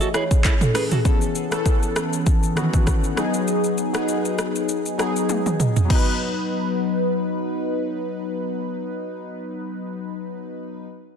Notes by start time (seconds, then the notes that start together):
Already playing: E3 A3 C#4 G#4
0.01 F#4 A4, shaker
0.14 E4 G#4 C#5, cross-stick, shaker
0.31 kick, shaker
0.44 E4 A4, kick, clap, shaker
0.61 A4, mid tom, shaker
0.74 E3 A3 C#4 G#4 B4, cross-stick, open hi-hat, shaker
0.91 F#4 G#4 A4, mid tom, shaker
1.04 E3 B3 C#4 A4, kick, shaker
1.21 shaker
1.35 shaker
1.51 E3 B3 C#4 A4, cross-stick, shaker
1.66 kick, shaker
1.83 shaker
1.96 cross-stick, shaker
2.13 shaker
2.26 kick, shaker
2.43 shaker
2.55 D#3 B3 C#4 F#4, cross-stick, shaker
2.62 E3
2.74 kick, shaker
2.87 kick, cross-stick, shaker
3.04 shaker
3.16 F#3 B3 D#4 G#4, cross-stick, shaker
3.34 shaker
3.48 shaker
3.64 shaker
3.78 shaker
3.93 F#3 B3 D#4 G#4, cross-stick, shaker
4.08 shaker
4.25 shaker
4.38 cross-stick, shaker
4.56 shaker
4.69 shaker
4.86 shaker
4.98 F#3 B3 D#4 G#4, cross-stick, shaker
5.16 shaker
5.29 high tom, shaker
5.46 mid tom, shaker
5.60 mid tom, shaker
5.76 floor tom, shaker
5.85 F#3 B3
5.90 D#4, kick, crash
5.95 B4